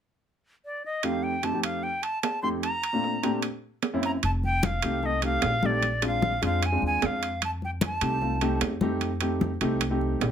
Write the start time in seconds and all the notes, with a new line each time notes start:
0.65 D5
0.85 D#5
1.03 F2 A3 C4 D#4 G4 F5, high timbale
1.23 G5
1.43 F2 A3 C4 D#4 G4 A5, high timbale, low timbale
1.53 F2 A3 C4 D#4 G4
1.63 F5, high timbale
1.83 G5
2.03 A5, high timbale
2.23 A5, high timbale, low timbale
2.43 F2 A3 C4 D#4 G4 C6
2.63 A#5, high timbale
2.83 high timbale
2.93 A#2 A3 C4 D4 F4
3.04 low timbale
3.23 A#2 A3 C4 D4 G4, high timbale
3.42 high timbale
3.83 high timbale, low timbale
3.93 F#2 A#3 C4 C#4 E4
4.03 A#5, high timbale
4.23 F1 A5, high conga, high timbale
4.43 G5, high conga
4.63 F5, high conga, high timbale, low timbale
4.82 C2 A3 C4 D#4 G4, high timbale
5.03 A3 C4 D#4 A4 D#5, high conga
5.22 A3 C4 D#4 G4 F5, high conga, high timbale
5.42 A#1, high conga, high timbale, low timbale
5.62 A3 C4 D#4 G4 D5, high conga
5.83 high conga, high timbale
6.02 G#3 C4 D4 F4, high conga, high timbale
6.07 F5
6.22 high conga, low timbale
6.42 F2 G#3 C4 D4 F4 F5, high conga, high timbale
6.62 G#5, high conga, high timbale
6.72 G#3 C4 D4 F4
6.82 D#2, high conga
6.87 G#5
7.02 F2 F5, high conga, high timbale, low timbale
7.23 high timbale
7.42 A5, high conga, high timbale
7.62 G5, high conga
7.81 high conga, high timbale, low timbale
7.85 A5
8.01 C2 A3 C4 D#4 G4, high timbale
8.21 A3 C4 D#4 F4, high conga
8.41 A3 C4 D#4 G4, high conga, high timbale
8.61 F2, high conga, high timbale, low timbale
8.81 A3 C4 D#4 G4, high conga
9.01 high conga, high timbale
9.21 A3 C4 D#4 G4, high conga, high timbale
9.41 high conga, low timbale
9.61 C2 A3 C4 D#4 G4, high conga, high timbale
9.81 high conga, high timbale
9.90 A3 C4 D#4 G4
10.01 high conga
10.20 A#1, high conga, high timbale, low timbale